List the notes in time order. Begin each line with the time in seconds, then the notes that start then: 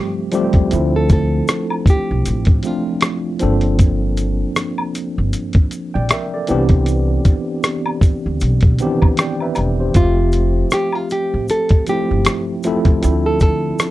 Already playing: F3 G3 A3 C4 G4
0.32 F3 G3 A3 C4 G4, closed hi-hat, shaker
0.53 C#2, kick, closed hi-hat
0.71 D2 F3 A3 C4 D4 E4, closed hi-hat, shaker
0.96 A4
1.09 A4, kick, closed hi-hat, shaker
1.48 cross-stick, closed hi-hat, shaker
1.70 high woodblock
1.86 kick, closed hi-hat, shaker
1.90 G4
2.11 B1
2.26 A1, closed hi-hat, shaker
2.45 kick, closed hi-hat
2.63 F3 A3 C4 D4 F4, closed hi-hat, shaker
2.67 F4
3.01 cross-stick, closed hi-hat, shaker
3.39 G1 F3 A#3 C4 D4 A4, closed hi-hat, shaker
3.61 closed hi-hat
3.79 kick, closed hi-hat, shaker
4.17 closed hi-hat, shaker
4.56 cross-stick, closed hi-hat, shaker
4.78 high woodblock
4.95 closed hi-hat, shaker
5.18 G1
5.33 closed hi-hat, shaker
5.53 kick, closed hi-hat
5.71 closed hi-hat, shaker
5.94 A#1 D5 G5
6.09 A#4 E5, cross-stick, closed hi-hat, shaker
6.34 A4 D5
6.47 C2 E3 B3 C4 D4 G4, closed hi-hat, shaker
6.69 kick, closed hi-hat
6.86 closed hi-hat, shaker
7.25 kick, closed hi-hat, shaker
7.63 cross-stick, closed hi-hat, shaker
7.86 high woodblock
8.01 kick, closed hi-hat, shaker
8.26 D2
8.40 B1, closed hi-hat, shaker
8.61 kick, closed hi-hat
8.79 D#3 B3 C4 D4 G4, closed hi-hat, shaker
8.86 E3
9.02 kick, high woodblock
9.17 D5 G5, cross-stick, closed hi-hat, shaker
9.40 B4 E5, high woodblock
9.55 E1, closed hi-hat, high woodblock, shaker
9.80 G4 C5
9.94 F1 F3 A3 C4 F4 G4 E5, kick, closed hi-hat, shaker
10.32 closed hi-hat, shaker
10.71 G4, cross-stick, closed hi-hat, shaker
10.92 F4, high woodblock
11.10 G4, closed hi-hat, shaker
11.34 A1
11.48 A4, closed hi-hat, shaker
11.69 kick, closed hi-hat
11.87 F3 A3 C4 E4 G4, closed hi-hat, shaker
11.91 G4
12.11 G1
12.25 cross-stick, closed hi-hat, shaker
12.63 F3 A3 C4 E4, closed hi-hat, shaker
12.67 A4
12.85 C#2, kick, closed hi-hat
13.02 D2 F3 C4 D4 E4 A4, closed hi-hat, shaker
13.26 A4
13.40 A4, kick, closed hi-hat, shaker
13.79 cross-stick, closed hi-hat, shaker